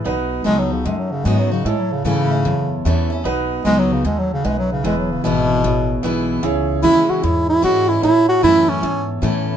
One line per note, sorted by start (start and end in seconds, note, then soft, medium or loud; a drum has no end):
0.05 0.44 B1 medium
0.05 0.82 B2 medium
0.05 0.40 D#4 loud
0.05 0.41 F#4 loud
0.05 0.41 B4 loud
0.44 0.84 C#2 medium
0.44 0.83 F#3 medium
0.44 0.60 G#3 loud
0.44 0.84 B3 medium
0.44 0.80 D#4 medium
0.44 0.84 D#4 medium
0.44 0.81 F#4 medium
0.44 0.84 F#4 medium
0.44 0.81 A4 medium
0.59 0.74 F#3 medium
0.73 0.87 C#3 medium
0.85 1.62 F#2 medium
0.85 1.24 F#2 medium
0.85 0.98 G#3 medium
0.85 1.20 D#4 medium
0.85 1.21 F#4 medium
0.85 1.21 A4 medium
0.99 1.13 F#3 medium
1.12 1.27 C#3 medium
1.25 1.64 G#2 medium
1.25 1.50 F#3 medium
1.25 1.40 G#3 medium
1.25 1.50 B3 medium
1.25 1.61 D#4 medium
1.25 1.50 D#4 medium
1.25 1.61 F#4 medium
1.25 1.50 F#4 medium
1.25 1.61 C#5 medium
1.39 1.53 F#3 medium
1.51 1.67 C#3 medium
1.51 1.66 D#4 soft
1.51 1.65 F#4 medium
1.65 2.04 A2 medium
1.65 2.43 A2 medium
1.65 1.81 G#3 medium
1.65 2.01 E4 medium
1.65 2.01 A4 medium
1.65 2.01 C#5 loud
1.80 1.94 F#3 medium
1.92 2.05 C#3 medium
2.05 2.44 G#2 medium
2.05 2.83 C#3 loud
2.05 2.30 E3 medium
2.05 2.30 A3 medium
2.05 2.30 C#4 medium
2.05 2.40 E4 medium
2.05 2.29 E4 loud
2.05 2.41 A4 medium
2.05 2.41 C#5 medium
2.30 2.45 C#4 soft
2.30 2.44 E4 medium
2.45 3.22 E2 medium
2.45 2.84 F#2 medium
2.45 2.80 E4 medium
2.45 2.81 A4 medium
2.45 2.81 C#5 medium
2.85 3.24 E2 loud
2.85 3.10 E3 medium
2.85 3.10 A3 medium
2.85 3.10 C#4 medium
2.85 3.20 E4 medium
2.85 3.09 E4 medium
2.85 3.21 A4 medium
2.85 3.21 C#5 medium
3.10 3.25 C#4 soft
3.10 3.24 E4 medium
3.24 3.64 B1 medium
3.24 4.02 B2 medium
3.24 3.60 D#4 loud
3.24 3.60 F#4 loud
3.24 3.60 B4 loud
3.64 4.03 C#2 medium
3.64 4.03 F#3 medium
3.64 3.80 G#3 loud
3.64 4.04 B3 medium
3.64 4.00 D#4 medium
3.64 4.04 D#4 medium
3.64 4.00 F#4 medium
3.64 4.04 F#4 medium
3.64 4.01 B4 medium
3.79 3.95 F#3 loud
3.93 4.05 C#3 medium
4.04 4.43 D#2 medium
4.04 4.43 G#2 medium
4.04 4.20 G#3 medium
4.04 4.40 D#4 medium
4.04 4.40 F#4 medium
4.04 4.40 A4 medium
4.19 4.31 F#3 loud
4.33 4.47 C#3 loud
4.44 4.83 B1 medium
4.44 4.83 F#2 medium
4.44 4.58 G#3 loud
4.44 4.79 D#4 medium
4.44 4.80 F#4 medium
4.44 4.80 B4 medium
4.59 4.71 F#3 medium
4.72 4.84 C#3 medium
4.84 5.23 E1 medium
4.84 5.61 E2 medium
4.84 4.98 G#3 loud
4.84 5.19 E4 medium
4.84 5.20 G#4 medium
4.84 5.20 B4 loud
4.98 5.13 F#3 medium
5.11 5.23 C#3 medium
5.23 5.63 G#1 medium
5.23 6.01 B2 loud
5.23 5.62 E3 medium
5.23 5.63 G#3 medium
5.23 5.63 B3 medium
5.23 5.59 E4 medium
5.23 5.64 E4 medium
5.23 5.59 G#4 medium
5.23 5.60 B4 medium
5.63 6.03 A1 medium
5.63 6.41 B2 medium
5.63 5.99 E4 medium
5.63 5.99 G#4 medium
5.63 6.00 C#5 medium
6.03 6.43 B1 loud
6.03 6.42 E3 medium
6.03 6.42 G#3 medium
6.03 6.43 B3 medium
6.03 6.39 E4 medium
6.03 6.43 E4 medium
6.03 6.39 G#4 medium
6.03 6.39 B4 medium
6.42 6.82 C#2 medium
6.42 7.20 C#3 medium
6.42 6.78 E4 loud
6.42 6.79 G#4 loud
6.42 6.79 C#5 loud
6.82 7.07 D#2 loud
6.82 7.21 E3 medium
6.82 7.22 G#3 medium
6.82 7.22 C#4 medium
6.82 7.18 E4 medium
6.82 7.11 E4 loud
6.82 7.23 E4 medium
6.82 7.19 G#4 medium
6.82 7.19 C#5 medium
7.09 7.26 F#4 loud
7.09 muted upright bass stroke soft
7.22 7.62 E2 medium
7.22 8.00 G#2 medium
7.22 7.58 E4 medium
7.22 7.49 E4 loud
7.22 7.58 G#4 medium
7.22 7.59 C#5 medium
7.49 7.63 E4 loud
7.62 8.02 G#2 medium
7.62 8.01 E3 medium
7.62 8.02 G#3 medium
7.62 8.02 C#4 medium
7.62 7.98 E4 medium
7.62 8.02 E4 medium
7.62 7.90 F#4 loud
7.62 7.98 G#4 medium
7.62 7.99 C#5 medium
7.89 8.03 E4 loud
8.01 8.42 A2 medium
8.01 8.80 A2 medium
8.01 8.38 E4 medium
8.01 8.28 E4 loud
8.01 8.38 A4 loud
8.01 8.38 C#5 loud
8.29 8.43 F#4 loud
8.42 8.82 F#2 medium
8.42 8.81 E3 medium
8.42 8.81 A3 medium
8.42 8.82 C#4 medium
8.42 8.78 E4 medium
8.42 8.71 E4 loud
8.42 8.82 E4 medium
8.42 8.78 A4 medium
8.42 8.78 C#5 medium
8.69 9.08 C#4 loud
8.81 9.57 E2 medium
8.81 9.22 G#2 medium
8.81 9.17 E4 medium
8.81 9.18 A4 medium
8.81 9.18 C#5 medium
9.22 9.57 A2 loud
9.22 9.57 E3 medium
9.22 9.57 A3 medium
9.22 9.57 C#4 medium
9.22 9.57 E4 medium
9.22 9.57 E4 loud
9.22 9.57 A4 medium
9.22 9.57 C#5 medium